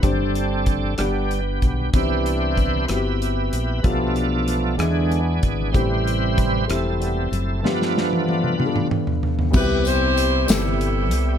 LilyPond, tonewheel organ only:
<<
  \new Staff \with { instrumentName = "Tonewheel organ" } { \time 6/8 \key c \major \tempo 4. = 63 <c' d' a'>4. <d' g'>4. | <e' g' c''>4. <e' g' b'>4. | <d' f' a'>4. <d' gis'>4. | <e' g' c''>4. <c' e' a'>4. |
<d' f' b'>2 r4 | <c g e' g'>2. | }
  \new Staff \with { instrumentName = "Tonewheel organ" } { \clef bass \time 6/8 \key c \major g4. <g b>8 r4 | <e d' b'>4. r4. | <f a b>4. <d gis b>8 r4 | <c g b'>4. r8 <c g b>8 r8 |
<f a b>4. r4. | r2. | }
>>